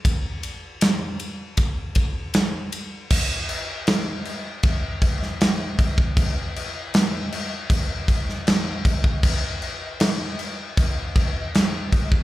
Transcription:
\new DrumStaff \with { instrumentName = "Drums" } \drummode { \time 4/4 \tempo 4 = 78 <bd cymr>8 cymr8 <cymr sn>8 cymr8 <bd cymr>8 <bd cymr>8 <cymr sn>8 cymr8 | <cymc bd>8 cymc8 <cymc sn>8 cymc8 <cymc bd>8 <cymc bd>16 sn16 <cymc sn>8 <cymc bd>16 bd16 | <cymc bd>8 cymc8 <cymc sn>8 cymc8 <cymc bd>8 <cymc bd>16 sn16 <cymc sn>8 <cymc bd>16 bd16 | <cymc bd>8 cymc8 <cymc sn>8 cymc8 <cymc bd>8 <cymc bd>8 <cymc sn>8 <cymc bd>16 bd16 | }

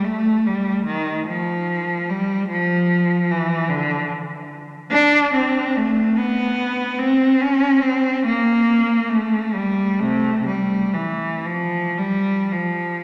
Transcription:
\new Staff \with { instrumentName = "Cello" } { \clef bass \time 6/8 \key f \major \tempo 4. = 48 a8 g8 ees8 f4 g8 | f4 e8 d8 r4 | \key c \major d'8 c'8 a8 b4 c'8 | cis'8 c'8 bes4 a8 g8 |
<c a>8 g8 e8 f8 g8 f8 | }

